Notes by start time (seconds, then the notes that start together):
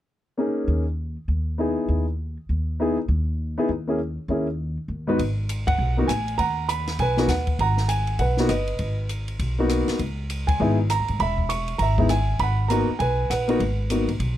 0.38 A#3 C#4 D#4 G#4
0.68 D#2
1.28 D#2
1.58 B3 D#4 E4 G#4
1.89 D#2
2.49 D#2
2.80 B3 D#4 E4 G#4
3.08 D#2
3.58 B3 D#4 E4 G#4
3.69 D#2
3.87 A#3 C#4 E4 G#4
4.28 D#2 A#3 C#4 E4 G#4
4.88 D#2
5.07 G#2 B3 D#4 F#4 B4
5.19 G#1, kick, ride
5.49 hi-hat pedal, ride
5.67 F#5, kick, ride
5.78 B1
5.97 A#3 B3 D#4 F#4
6.08 A1 G#5, cross-stick, hi-hat pedal, ride
6.28 ride
6.38 D#2 F#5 A#5, kick, ride
6.69 B5, hi-hat pedal, ride
6.87 snare, ride
6.99 B1 B4 G#5, kick, ride
7.17 A#3 B3 D#4 F#4, snare
7.28 D#2 F#5, cross-stick, snare, hi-hat pedal, ride
7.47 kick, ride
7.59 G#1 F#5 A#5, kick, ride
7.77 snare
7.89 G#5, hi-hat pedal, ride
8.07 ride
8.19 B1 B4 F#5, kick, ride
8.37 A#3 B3 D#4 F#4, snare
8.49 G1 B4 D#5, cross-stick, hi-hat pedal, ride
8.67 ride
8.79 G#1, kick, ride
9.09 hi-hat pedal, ride
9.28 ride
9.39 B1, kick, ride
9.59 A#3 B3 D#4 F#4
9.69 cross-stick, hi-hat pedal, ride
9.88 muted upright bass stroke, snare, ride
9.99 C#2, kick, ride
10.30 hi-hat pedal, ride
10.47 G#5, kick, ride
10.60 G#1 G#3 B3 D#4 E4
10.90 A#5, cross-stick, hi-hat pedal, ride
11.00 E2
11.08 G#2, ride
11.19 E1 E5 B5, kick, ride
11.38 kick
11.49 C#6, hi-hat pedal, ride
11.68 ride
11.78 G#1 E5 A#5, kick, ride
11.98 G#3 B3 D#4 E4, kick
12.09 G#5, cross-stick, hi-hat pedal, ride
12.39 G#1 B5, kick, ride
12.43 F#5
12.68 A#3 B3 D#4 F#4 A#5, hi-hat pedal, ride
12.89 muted upright bass stroke
12.99 B1 B4 G#5, kick, ride
13.30 A#1 B4 F#5, cross-stick, hi-hat pedal, ride
13.48 A#3 B3 D#4 F#4, ride
13.60 G#1, kick, ride
13.90 A#3 B3 D#4 F#4, hi-hat pedal, ride
14.08 A1, ride
14.20 B1, kick, ride